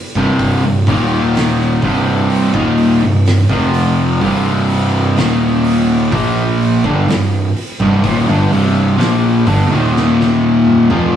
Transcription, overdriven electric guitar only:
0.17 0.63 C2 loud
0.17 0.63 G2 loud
0.17 0.63 C3 loud
0.65 0.88 C2 medium
0.65 0.88 G2 medium
0.88 1.82 D#2 loud
0.88 1.82 A#2 loud
0.88 1.83 D#3 loud
1.84 2.54 C2 medium
1.84 2.54 G2 loud
1.84 2.54 C3 loud
2.55 3.01 D#2 medium
2.55 3.01 A#2 medium
2.55 3.02 D#3 loud
3.04 3.41 C2 medium
3.04 3.42 G2 medium
3.51 4.21 F2 medium
3.51 4.21 C3 medium
3.51 4.21 F3 loud
4.22 5.16 C2 loud
4.22 5.16 G2 loud
4.22 5.17 C3 loud
5.18 6.12 D#2 loud
5.18 6.12 A#2 loud
5.18 6.12 D#3 loud
6.13 6.83 A#2 medium
6.13 6.83 F3 loud
6.13 6.84 A#3 loud
6.85 7.07 G2 medium
6.85 7.07 D3 medium
7.09 7.47 C2 medium
7.09 7.47 G2 medium
7.82 8.03 C2 medium
7.82 8.03 G2 loud
8.05 8.27 D#2 loud
8.05 8.27 A#2 loud
8.29 8.51 G2 medium
8.29 8.51 D3 medium
8.52 8.98 C2 medium
8.52 8.99 G2 loud
8.52 8.99 C3 loud
8.99 9.45 A#2 medium
8.99 9.45 F3 loud
8.99 9.46 A#3 loud
9.46 9.69 G2 medium
9.46 9.69 D3 loud
9.71 10.89 D#2 medium
9.71 10.89 A#2 medium
9.71 10.89 D#3 loud
10.90 11.16 F2 medium
10.90 11.16 C3 loud
10.90 11.16 F3 loud

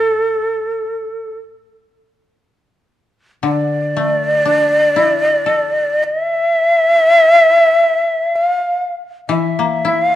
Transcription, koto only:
0.00 1.71 A2 medium
3.43 6.46 D3 medium
3.97 5.97 A3 soft
4.45 6.46 D4 soft
4.96 6.97 E4 soft
5.46 7.49 A4 soft
9.29 10.15 E3 medium
9.59 10.15 A#3 soft
9.85 10.15 E4 soft

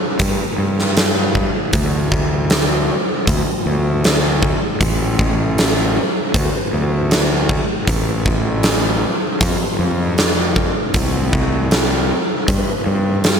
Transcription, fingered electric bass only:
0.20 0.34 G2 medium
0.58 1.45 G2 medium
1.73 2.89 D2 medium
3.28 3.42 D2 medium
3.66 4.53 D2 medium
4.81 5.97 A1 medium
6.35 6.49 D2 medium
6.73 7.60 D2 medium
7.87 9.04 A1 medium
9.41 9.56 F2 medium
9.79 10.66 F2 medium
10.95 12.11 C2 medium
12.48 12.63 G2 medium
12.86 13.40 G2 medium

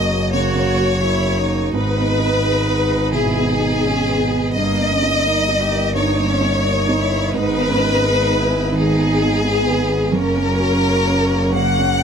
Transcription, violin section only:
0.00 0.29 D#5 loud
0.35 1.74 C#5 loud
1.75 3.11 B4 loud
3.13 4.53 G#4 loud
4.54 5.92 D#5 loud
5.95 7.31 C#5 loud
7.32 8.72 B4 loud
8.74 10.13 G#4 loud
10.15 11.55 A#4 loud
11.55 12.03 F#5 loud

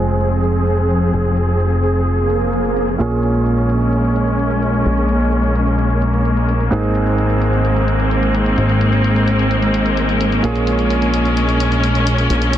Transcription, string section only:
0.00 2.96 F3 medium
0.00 2.96 C4 medium
0.00 2.96 G#4 medium
3.00 6.68 G#3 medium
3.00 12.58 A#3 medium
3.00 6.68 C#4 medium
6.72 12.58 G#3 medium
6.72 10.40 C4 medium
10.44 12.58 C#4 medium

